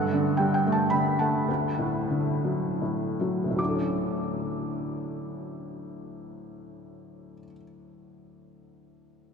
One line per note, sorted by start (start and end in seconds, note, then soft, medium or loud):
0.00 1.45 G2 soft
0.00 0.61 A4 soft
0.00 0.34 F#5 medium
0.13 0.92 D3 soft
0.37 1.45 G3 soft
0.37 0.53 G5 medium
0.54 0.74 G5 medium
0.66 1.18 A3 soft
0.72 0.92 A5 medium
0.90 1.48 D3 soft
0.90 1.19 B5 medium
1.19 1.48 A3 soft
1.19 3.16 F#5 soft
1.19 3.16 A5 medium
1.48 3.42 D2 soft
1.79 2.80 A2 soft
2.10 3.55 D3 soft
2.45 3.19 F#3 soft
2.81 3.49 A2 soft
3.21 3.55 F#3 soft
3.44 7.31 D2 soft
3.50 7.38 A2 soft
3.56 7.44 F#3 soft
3.56 7.46 D6 soft
3.63 7.50 D4 soft
3.69 7.56 A4 soft
3.75 7.63 C#4 soft